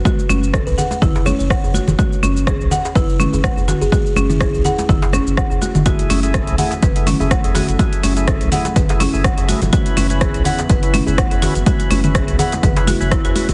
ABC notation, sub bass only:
X:1
M:4/4
L:1/16
Q:"Swing 16ths" 1/4=124
K:F#m
V:1 name="Sub bass" clef=bass
z2 F,,,3 C,, z2 F,,,2 z F,,, z F,,, z F,,, | z2 F,,,3 C,, z2 F,,,2 z F,,, z F,,, z F,,, | z2 F,,,3 C,, z2 F,,,2 z F,,, z F,,, z F,,,- | F,,, z F,,,3 C,, z2 F,,,2 z F,,, z F,,, z F,,, |
z2 F,,,3 C,, z2 F,,,2 z F,,, z F,,, z F,,, | z2 F,,,3 C,, z2 F,,,2 z F,,, z F,,, z F,,, | z2 F,,,3 C,, z2 F,,,2 z F,,, z F,,, z F,,, |]